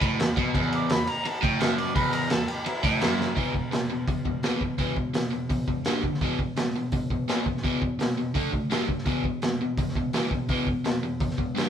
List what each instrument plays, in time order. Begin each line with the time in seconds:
Already playing: harmonica B5
0.01 overdriven electric guitar A2, kick, ride
0.19 overdriven electric guitar E2, snare, ride
0.37 overdriven electric guitar B2, kick, ride
0.55 overdriven electric guitar E2, kick, ride
0.72 harmonica D6, ride
0.90 overdriven electric guitar E2, harmonica B5, snare, ride
1.07 harmonica A#5, ride
1.25 harmonica A5, muted overdriven electric guitar stroke, ride
1.42 overdriven electric guitar A2, harmonica G5, kick, ride
1.60 overdriven electric guitar F#2, harmonica E5, snare, ride
1.78 harmonica D5, ride
1.95 overdriven electric guitar E2, harmonica B4, kick, ride
2.13 harmonica A#4, ride
2.30 overdriven electric guitar E2, harmonica A4, snare, ride
2.48 harmonica G4, ride
2.66 harmonica E4, muted overdriven electric guitar stroke, ride
2.84 overdriven electric guitar A2, harmonica E4, kick, ride
3.01 overdriven electric guitar F#2, snare, ride
3.21 snare
3.36 overdriven electric guitar E2 B2 E3, kick, open hi-hat
3.54 overdriven electric guitar E2 B2, kick
3.72 overdriven electric guitar E2 B2, snare, open hi-hat
3.90 overdriven electric guitar E2 B2
4.08 overdriven electric guitar E2 B2, kick, open hi-hat
4.25 overdriven electric guitar E2 B2, kick
4.43 overdriven electric guitar E2 B2 E3, snare, open hi-hat
4.61 overdriven electric guitar E2 B2, kick
4.78 overdriven electric guitar E2 B2 E3, kick, open hi-hat
4.96 overdriven electric guitar E2 B2, kick
5.14 overdriven electric guitar E2 B2, snare, open hi-hat
5.31 overdriven electric guitar E2 B2
5.49 overdriven electric guitar E2 B2, kick, open hi-hat
5.68 overdriven electric guitar E2 B2, kick
5.85 overdriven electric guitar G2 D3 G3, snare, open hi-hat
6.03 overdriven electric guitar G2 D3, kick
6.14 snare
6.21 overdriven electric guitar E2 B2 E3, kick, open hi-hat
6.39 overdriven electric guitar E2 B2, kick
6.56 overdriven electric guitar E2 B2, snare, open hi-hat
6.76 overdriven electric guitar E2 B2
6.92 overdriven electric guitar E2 B2, kick, open hi-hat
7.10 overdriven electric guitar E2 B2, kick
7.28 overdriven electric guitar E2 B2 E3, snare, open hi-hat
7.46 overdriven electric guitar E2 B2, kick
7.57 snare
7.64 overdriven electric guitar E2 B2 E3, kick, open hi-hat
7.82 overdriven electric guitar E2 B2, kick
7.99 overdriven electric guitar E2 B2, snare, open hi-hat
8.18 overdriven electric guitar E2 B2
8.34 overdriven electric guitar D3 A3 D4, kick, open hi-hat
8.52 overdriven electric guitar D3 A3, kick
8.70 overdriven electric guitar G2 D3 G3, snare, open hi-hat
8.89 overdriven electric guitar G2 D3, kick
8.98 snare
9.06 overdriven electric guitar E2 B2 E3, kick, open hi-hat
9.24 overdriven electric guitar E2 B2, kick
9.42 overdriven electric guitar E2 B2, snare, open hi-hat
9.61 overdriven electric guitar E2 B2
9.77 overdriven electric guitar E2 B2, kick, open hi-hat
9.89 snare
9.96 overdriven electric guitar E2 B2, kick
10.13 overdriven electric guitar E2 B2 E3, snare, open hi-hat
10.31 overdriven electric guitar E2 B2, kick
10.49 overdriven electric guitar E2 B2 E3, kick, open hi-hat
10.67 overdriven electric guitar E2 B2, kick
10.85 overdriven electric guitar E2 B2, snare, open hi-hat
11.03 overdriven electric guitar E2 B2
11.20 overdriven electric guitar E2 B2, kick, open hi-hat
11.31 snare
11.38 overdriven electric guitar E2 B2, kick
11.55 overdriven electric guitar G2 D3 G3, snare, open hi-hat